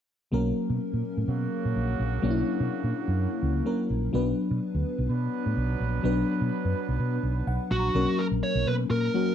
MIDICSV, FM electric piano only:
0, 0, Header, 1, 2, 480
1, 0, Start_track
1, 0, Tempo, 476190
1, 332, Time_signature, 4, 2, 24, 8
1, 9424, End_track
2, 0, Start_track
2, 0, Title_t, "FM electric piano"
2, 0, Program_c, 0, 5
2, 319, Note_on_c, 0, 54, 62
2, 327, Note_on_c, 0, 58, 55
2, 336, Note_on_c, 0, 61, 57
2, 341, Note_on_c, 0, 70, 68
2, 531, Control_c, 0, 64, 127
2, 2207, Note_off_c, 0, 54, 0
2, 2211, Note_off_c, 0, 58, 0
2, 2215, Note_off_c, 0, 61, 0
2, 2218, Note_off_c, 0, 70, 0
2, 2238, Note_on_c, 0, 54, 62
2, 2246, Note_on_c, 0, 58, 59
2, 2254, Note_on_c, 0, 61, 59
2, 2262, Note_on_c, 0, 62, 57
2, 2320, Note_off_c, 0, 62, 0
2, 2323, Note_on_c, 0, 64, 68
2, 3656, Note_off_c, 0, 54, 0
2, 3660, Note_off_c, 0, 58, 0
2, 3664, Note_off_c, 0, 61, 0
2, 3684, Note_on_c, 0, 54, 52
2, 3689, Note_on_c, 0, 58, 47
2, 3691, Note_on_c, 0, 61, 48
2, 3695, Note_on_c, 0, 70, 55
2, 3699, Note_off_c, 0, 64, 0
2, 4149, Note_off_c, 0, 54, 0
2, 4161, Note_on_c, 0, 54, 64
2, 4168, Note_on_c, 0, 59, 61
2, 4170, Note_off_c, 0, 58, 0
2, 4171, Note_off_c, 0, 61, 0
2, 4173, Note_off_c, 0, 70, 0
2, 4175, Note_on_c, 0, 62, 60
2, 4182, Control_c, 0, 64, 0
2, 4183, Note_on_c, 0, 71, 71
2, 4380, Control_c, 0, 64, 127
2, 6048, Note_off_c, 0, 54, 0
2, 6051, Note_off_c, 0, 59, 0
2, 6055, Note_off_c, 0, 62, 0
2, 6059, Note_off_c, 0, 71, 0
2, 6081, Note_on_c, 0, 54, 62
2, 6087, Note_on_c, 0, 59, 61
2, 6096, Note_on_c, 0, 62, 58
2, 6103, Note_on_c, 0, 71, 72
2, 7534, Note_on_c, 0, 78, 65
2, 7830, Note_off_c, 0, 78, 0
2, 7856, Note_on_c, 0, 82, 65
2, 7968, Note_off_c, 0, 54, 0
2, 7971, Note_off_c, 0, 59, 0
2, 7975, Note_off_c, 0, 62, 0
2, 7979, Note_off_c, 0, 71, 0
2, 8003, Note_off_c, 0, 82, 0
2, 8009, Note_on_c, 0, 54, 66
2, 8011, Note_on_c, 0, 58, 60
2, 8015, Note_on_c, 0, 61, 60
2, 8020, Note_on_c, 0, 70, 73
2, 8026, Control_c, 0, 64, 0
2, 8178, Control_c, 0, 64, 127
2, 8691, Note_off_c, 0, 54, 0
2, 8692, Note_off_c, 0, 58, 0
2, 8694, Note_off_c, 0, 61, 0
2, 8697, Note_off_c, 0, 70, 0
2, 9213, Note_on_c, 0, 54, 58
2, 9215, Note_on_c, 0, 58, 53
2, 9219, Note_on_c, 0, 61, 54
2, 9225, Note_on_c, 0, 66, 66
2, 9424, Note_off_c, 0, 54, 0
2, 9424, Note_off_c, 0, 58, 0
2, 9424, Note_off_c, 0, 61, 0
2, 9424, Note_off_c, 0, 66, 0
2, 9424, End_track
0, 0, End_of_file